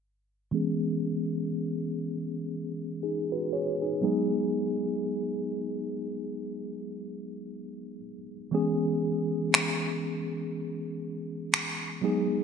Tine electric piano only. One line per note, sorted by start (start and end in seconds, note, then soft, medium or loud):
0.51 3.98 E3 medium
0.51 3.98 G#3 medium
0.51 3.99 B3 medium
0.51 3.99 C#4 medium
0.51 3.00 G#4 medium
3.03 3.31 D#4 soft
3.03 3.30 G#4 medium
3.32 3.52 F#4 medium
3.32 3.52 B4 medium
3.53 3.81 G#4 medium
3.53 3.80 C#5 medium
3.82 4.02 D#4 soft
3.82 4.03 G#4 medium
4.01 7.98 F#3 medium
4.01 7.98 G#3 medium
4.01 7.99 B3 medium
4.01 7.99 D#4 medium
4.01 7.99 G#4 medium
8.51 11.98 E3 medium
8.51 11.98 G#3 medium
8.51 11.99 B3 medium
8.51 11.99 C#4 medium
8.51 12.00 G#4 medium
12.01 12.44 F#3 medium
12.01 12.44 G#3 medium
12.01 12.44 B3 medium
12.01 12.44 D#4 medium
12.01 12.44 G#4 medium